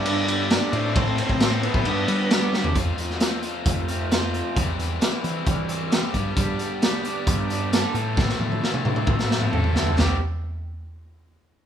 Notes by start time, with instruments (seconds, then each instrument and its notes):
Already playing: picked electric bass G2, transistor combo organ A4 D5 G5 B5
0.05 overdriven electric guitar G2 D3 G3 B3 D4 G4, ride
0.28 ride
0.50 overdriven electric guitar G2 D3 G3 B3 D4 G4, snare, ride
0.72 overdriven electric guitar A2 E3 A3 C4 E4 A4, picked electric bass A2, transistor combo organ C5 E5 C6, ride
0.94 overdriven electric guitar A2 E3 A3 C4 E4, kick, ride
0.99 overdriven electric guitar A4
1.18 lead electric guitar C4, ride
1.29 picked electric bass A2, kick
1.39 overdriven electric guitar A2 E3 A3 C4 E4 A4, snare, ride
1.62 overdriven electric guitar A2 E3 A3 C4 E4 A4, lead electric guitar B3, ride
1.74 picked electric bass A2, kick
1.85 overdriven electric guitar G2 D3 G3 B3 D4 G4, picked electric bass G2, transistor combo organ G4 B4 D5 B5, ride
2.08 picked electric bass G3, ride
2.30 overdriven electric guitar G2 D3 G3 B3 D4 G4, snare, ride
2.52 overdriven electric guitar G2 D3 G3 B3 D4 G4, snare
2.64 floor tom
2.73 overdriven electric guitar F2 F3 A3 C4, picked electric bass F2, kick, closed hi-hat
2.77 overdriven electric guitar F4
2.97 overdriven electric guitar A3 C4 F4, closed hi-hat
3.10 snare
3.20 overdriven electric guitar F3 A3 C4 F4, snare, closed hi-hat
3.42 overdriven electric guitar A3 C4 F4, closed hi-hat
3.66 picked electric bass F2, overdriven electric guitar A3, kick, closed hi-hat
3.88 overdriven electric guitar A3 C4 F4, closed hi-hat
4.11 overdriven electric guitar F3 A3 C4 F4, snare, closed hi-hat
4.33 overdriven electric guitar C4, closed hi-hat
4.56 picked electric bass E2, overdriven electric guitar E3 G3 C4 E4, kick, closed hi-hat
4.78 picked electric bass E2, overdriven electric guitar G3 C4 E4, closed hi-hat
5.00 overdriven electric guitar E3 G3 C4 E4, snare, closed hi-hat
5.23 picked electric bass E3, overdriven electric guitar G3 C4 E4, closed hi-hat
5.46 picked electric bass E3, overdriven electric guitar G3, kick, closed hi-hat
5.68 overdriven electric guitar G3 C4 E4, closed hi-hat
5.91 overdriven electric guitar E3 G3 C4 E4 G4, snare, closed hi-hat
6.13 picked electric bass G2, overdriven electric guitar G2 D3 G3 B3 D4, kick, closed hi-hat
6.35 overdriven electric guitar G2 D3 G3 B3 D4, picked electric bass G2, transistor combo organ G4 B4 D5 A5, kick, closed hi-hat
6.58 overdriven electric guitar B3 D4, closed hi-hat
6.62 overdriven electric guitar G3
6.80 overdriven electric guitar D3 G3 B3 D4, snare, closed hi-hat
7.02 overdriven electric guitar G3 B3 D4, closed hi-hat
7.06 overdriven electric guitar D4
7.27 picked electric bass G2, overdriven electric guitar B3, kick, closed hi-hat
7.48 overdriven electric guitar G3 B3 D4, closed hi-hat
7.70 overdriven electric guitar G2 D3 G3 B3 D4 A4, snare, closed hi-hat
7.93 picked electric bass A2, overdriven electric guitar A2 E3 A3 C4 E4, transistor combo organ A4 C5 A5, closed hi-hat
7.97 transistor combo organ E4
8.17 overdriven electric guitar A2 E3 A3 C4 E4, kick, snare
8.29 snare
8.39 picked electric bass A2, overdriven electric guitar A3 C4 E4, high tom
8.52 high tom
8.62 overdriven electric guitar E3 A3 C4 E4, snare
8.74 mid tom
8.85 picked electric bass A2, overdriven electric guitar A3 C4 E4, mid tom
8.96 mid tom
9.06 picked electric bass A2, overdriven electric guitar C4, kick, mid tom
9.19 snare
9.30 overdriven electric guitar A3 C4 E4, snare
9.41 mid tom
9.51 overdriven electric guitar A2 E3 A3 C4 A4, floor tom
9.56 overdriven electric guitar E4
9.64 floor tom
9.74 picked electric bass D2, overdriven electric guitar E4, snare
9.87 floor tom
9.96 picked electric bass C2, overdriven electric guitar C3 E3 G3 C4 E4 G4, transistor combo organ E4 A4 C5 G5, snare, floor tom, crash